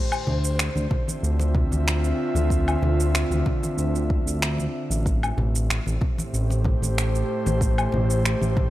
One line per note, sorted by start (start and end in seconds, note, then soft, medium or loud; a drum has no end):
0.00 5.05 D3 medium
0.00 1.39 G4 medium
0.00 0.96 C5 medium
0.12 low woodblock medium
0.12 shaker soft
0.27 0.69 D2 medium
0.27 muted conga soft
0.27 high conga soft
0.27 low conga medium
0.45 shaker medium
0.53 6.63 C4 medium
0.59 6.42 E5 medium
0.59 finger snap loud
0.59 shaker soft
0.75 0.87 D2 medium
0.75 high conga medium
0.75 shaker soft
0.91 kick medium
0.91 muted conga soft
0.91 low conga medium
1.02 5.05 F4 loud
1.08 high conga medium
1.08 shaker medium
1.23 1.65 D2 medium
1.23 shaker soft
1.40 muted conga medium
1.40 shaker soft
1.55 kick loud
1.55 low conga medium
1.71 2.13 D2 medium
1.71 high conga medium
1.71 shaker medium
1.88 finger snap loud
1.88 shaker medium
2.04 shaker soft
2.35 2.76 D2 loud
2.35 muted conga soft
2.35 high conga medium
2.35 shaker medium
2.50 kick loud
2.50 shaker medium
2.68 low woodblock medium
2.68 shaker soft
2.82 3.24 D2 medium
2.82 muted conga medium
2.82 high conga soft
2.82 low conga medium
3.00 shaker medium
3.15 finger snap loud
3.15 shaker medium
3.30 3.42 D2 medium
3.30 high conga medium
3.30 shaker soft
3.46 kick loud
3.46 muted conga medium
3.46 low conga medium
3.63 high conga medium
3.63 shaker medium
3.77 4.20 D2 medium
3.77 shaker medium
3.95 shaker soft
4.10 kick loud
4.26 4.68 D2 medium
4.26 shaker medium
4.42 finger snap loud
4.42 shaker medium
4.58 high conga medium
4.58 shaker soft
4.90 5.32 A1 loud
4.90 shaker medium
5.06 8.70 A2 medium
5.06 kick loud
5.06 shaker medium
5.23 low woodblock soft
5.23 shaker soft
5.28 8.70 A3 medium
5.37 5.80 A1 loud
5.37 muted conga soft
5.37 high conga soft
5.37 low conga medium
5.51 8.70 G4 medium
5.56 shaker medium
5.68 8.70 C5 medium
5.68 finger snap loud
5.68 shaker medium
5.86 5.98 A1 medium
5.86 high conga medium
5.86 shaker soft
6.01 kick loud
6.01 muted conga medium
6.01 low conga medium
6.18 high conga medium
6.18 shaker medium
6.33 6.76 A1 medium
6.33 shaker medium
6.50 muted conga medium
6.50 shaker soft
6.64 kick loud
6.64 low conga loud
6.82 7.23 A1 medium
6.82 high conga medium
6.82 shaker medium
6.98 finger snap loud
6.98 shaker medium
7.15 shaker soft
7.46 7.87 A1 loud
7.46 muted conga soft
7.46 high conga medium
7.46 shaker medium
7.61 kick loud
7.61 shaker medium
7.78 low woodblock medium
7.78 shaker soft
7.92 8.35 A1 loud
7.92 muted conga soft
7.92 high conga soft
7.92 low conga medium
8.10 shaker medium
8.25 finger snap medium
8.25 shaker medium
8.41 8.70 A1 medium
8.41 high conga medium
8.41 shaker soft
8.57 kick loud
8.57 muted conga soft
8.57 low conga medium